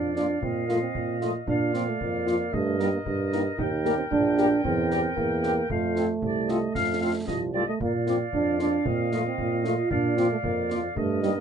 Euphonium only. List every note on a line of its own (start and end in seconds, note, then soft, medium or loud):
0.00 0.14 D4 medium
0.16 0.40 D4 medium
0.41 0.66 C4 medium
0.68 0.74 A#3 medium
0.81 1.18 C4 soft
1.21 1.33 F4 medium
1.47 1.72 D4 medium
1.74 1.90 C4 medium
1.88 2.02 A3 medium
2.01 2.55 A#3 soft
2.54 2.79 A3 medium
2.80 2.92 G3 medium
2.93 2.99 A#3 medium
3.59 3.70 D#4 medium
3.85 3.91 A#3 medium
3.98 4.04 C4 medium
4.11 4.60 D4 medium
4.64 5.18 C4 medium
5.17 5.69 A#3 medium
5.70 7.24 A3 medium
7.28 7.52 F3 soft
7.54 7.60 G3 soft
7.68 7.80 A3 soft
7.81 7.93 A#3 medium
8.08 8.19 C4 medium
8.34 8.58 D4 medium
8.60 8.88 D4 medium
8.87 9.12 C4 medium
9.13 9.18 A#3 medium
9.26 9.67 C4 medium
9.66 9.93 F4 medium
9.92 10.17 D4 medium
10.18 10.30 C4 medium
10.31 10.37 A3 medium
10.44 10.76 A#3 soft
10.97 11.21 A3 medium
11.23 11.29 G3 medium
11.37 11.40 A#3 medium